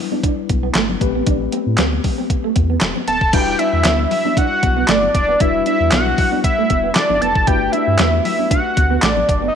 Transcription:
Already playing: G3 D4 E4 B4
0.12 D4, high conga
0.24 D4, kick, closed hi-hat, muted conga
0.49 B1, muted clean electric guitar stroke, kick, closed hi-hat, muted conga, high conga
0.63 B3
0.74 G1 A3, snare, clap, closed hi-hat
0.89 muted clean electric guitar stroke, high conga, low conga
1.00 A1 A3 B3 G4 B4, kick, closed hi-hat, muted conga
1.07 C4
1.15 B3
1.27 A1 D4, kick, closed hi-hat, muted conga, low conga
1.41 muted clean electric guitar stroke
1.52 C4, closed hi-hat, muted conga, high conga
1.66 A2
1.78 D2 B3, snare, clap, closed hi-hat, muted conga, high conga
1.92 muted clean electric guitar stroke, high conga
2.04 kick, open hi-hat, muted conga, low conga
2.18 C4, high conga
2.30 kick, closed hi-hat
2.44 A3
2.56 E2, muted clean electric guitar stroke, kick, closed hi-hat, muted conga, high conga
2.70 B3
2.81 E1, muted clean electric guitar stroke, snare, clap, closed hi-hat
2.96 C4, high conga, low conga
3.08 D1 B3 A5, closed hi-hat, muted conga
3.21 D#1, kick
3.33 E1 G3 D4 E4 F#4 B4 G5, kick, closed hi-hat, crash, muted conga
3.47 muted clean electric guitar stroke
3.59 D4 E5, closed hi-hat, muted conga
3.73 E2
3.84 D2 B3, snare, clap, closed hi-hat, high conga
3.99 muted clean electric guitar stroke, high conga
4.11 E5, open hi-hat, muted conga, low conga
4.25 D4, high conga
4.37 D4 F#5, kick, closed hi-hat, muted conga
4.63 B1, muted clean electric guitar stroke, kick, closed hi-hat, high conga
4.77 B3
4.88 G1 A3 D5, snare, clap, closed hi-hat, muted conga
5.03 muted clean electric guitar stroke, high conga, low conga
5.15 D#1 D5, kick, closed hi-hat, muted conga
5.29 B3
5.40 E1 G3 D4 E4 F#4 B4 E5, kick, closed hi-hat, muted conga
5.55 muted clean electric guitar stroke
5.66 D4 E5, closed hi-hat, muted conga
5.80 E2
5.91 B1 B3 F#5, snare, clap, closed hi-hat, high conga
6.07 muted clean electric guitar stroke, high conga
6.18 kick, open hi-hat, muted conga, low conga
6.32 D4, high conga
6.44 E5, kick, closed hi-hat
6.58 A3
6.70 E1, kick, closed hi-hat, muted conga, high conga
6.84 B3
6.95 D5, muted clean electric guitar stroke, snare, clap, closed hi-hat
7.10 G1 D4, high conga, low conga
7.21 F1 B3 A5, closed hi-hat, muted conga
7.35 F#1, kick
7.47 G1 A3 D4 E4 F#4 G4 B4 G5, kick, closed hi-hat, muted conga
7.61 muted clean electric guitar stroke
7.72 D4 E5, closed hi-hat, muted conga
7.87 G2
7.99 E2 B3, snare, clap, closed hi-hat, muted conga, high conga
8.13 muted clean electric guitar stroke, high conga
8.25 E5, open hi-hat, muted conga, low conga
8.39 D4, high conga
8.50 D4 F#5, kick, closed hi-hat, muted conga
8.77 D2, muted clean electric guitar stroke, kick, closed hi-hat, high conga
8.90 B3
9.02 A1 A3 D5, snare, clap, closed hi-hat, muted conga
9.16 muted clean electric guitar stroke, high conga, low conga
9.29 F#1, kick, closed hi-hat, muted conga
9.42 B3
9.48 D#5

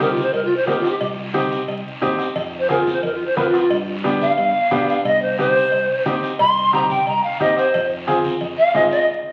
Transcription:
Already playing: C2
0.00 C4 D#4 G4 A#4, bombo rim, high conga, short guiro
0.11 F4
0.16 high conga, short guiro
0.22 C5
0.34 C2 A#4, cowbell, long guiro
0.45 F4
0.57 C5
0.67 D#2 C4 D#4 G4 A#4, bombo low, bombo rim, high conga, low timbale, short guiro
0.79 F4
0.84 bombo rim, short guiro
0.90 G4
1.01 C2, bombo low, cowbell, long guiro
1.33 C4 D#4 G4, bombo rim, high conga, short guiro
1.51 short guiro
1.68 C2, cowbell, long guiro
2.02 D#2 C4 D#4 G4, bombo low, bombo rim, high conga, low conga, low timbale, short guiro
2.19 bombo rim, short guiro
2.36 F2, bombo low, cowbell, long guiro
2.59 C5
2.69 C4 F4 G#4 A#4, bombo rim, high conga, short guiro
2.81 F4
2.87 high conga, short guiro
2.92 C5
3.03 F2 A#4, cowbell, long guiro
3.14 F4
3.26 C5
3.36 F2 C4 F4 A#4 B4, bombo low, bombo rim, high conga, low timbale, short guiro
3.49 F4
3.54 bombo rim, short guiro
3.60 F4
3.70 G2, bombo low, cowbell, long guiro
4.04 B3 D4 G4, bombo rim, high conga, short guiro
4.21 F5, high conga, low conga, short guiro
4.38 G2, cowbell, long guiro
4.71 B2 B3 D4 G4, bombo low, bombo rim, high conga, low conga, low timbale, short guiro
4.89 F5, short guiro
5.05 C2 D#5, bombo low, cowbell, long guiro
5.22 C5
5.38 C4 D#4 G4 C5, bombo rim, high conga, short guiro
5.55 short guiro
5.72 C2, cowbell, long guiro
6.05 D#2 C4 D#4 G4, bombo low, bombo rim, high conga, low timbale, short guiro
6.23 short guiro
6.39 C2 C6, bombo low, cowbell, long guiro
6.73 C4 D#4 G4 A#5, bombo rim, high conga, short guiro
6.90 G5, high conga, low conga, short guiro
7.07 C2 A#5, cowbell, long guiro
7.24 F5
7.40 D#2 C4 D#4 G4 D#5, bombo low, bombo rim, high conga, low conga, short guiro
7.57 C5, bombo rim, short guiro
7.74 F2, bombo low, cowbell, long guiro
8.07 C4 F4 G#4, bombo rim, high conga, short guiro
8.25 high conga, short guiro
8.41 F2, cowbell, long guiro
8.58 F5
8.74 G#2 C4 F4 G#4 D#5, bombo low, bombo rim, high conga, low timbale, short guiro
8.91 D#5, short guiro

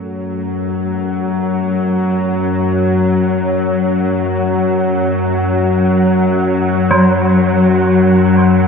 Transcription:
Already playing: F#2 F#3 A3 F#4 A4 F#5
0.53 C#5
6.91 F#3

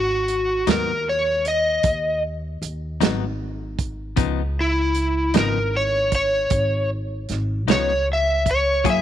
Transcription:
Already playing: G#1 F#4
0.28 closed hi-hat
0.66 D#2 G#2 F#3 B3 D#4, snare, closed hi-hat
0.71 A#4
1.09 C#5
1.45 D#5, closed hi-hat
1.83 D#2, kick, closed hi-hat
2.62 D#2, closed hi-hat
3.00 G#1 G#2 F#3 B3 D#4, snare, closed hi-hat
3.79 kick, closed hi-hat
4.16 C#2 C#3 F3 B3 D#4, kick, closed hi-hat
4.61 E4
4.95 closed hi-hat
5.34 G#1 C#3 F3 B3 D#4, snare, closed hi-hat
5.39 A#4
5.77 C#5
6.12 C#5, kick, closed hi-hat
6.50 G#1, kick, closed hi-hat
7.29 G#1, snare, closed hi-hat
7.68 C#2 C#3 F3 B3 D#4 C#5, snare, closed hi-hat
8.13 E5
8.46 kick, closed hi-hat
8.51 C#5
8.84 F#2 F#3 A#3 E4 G#4, kick, closed hi-hat
8.90 E5

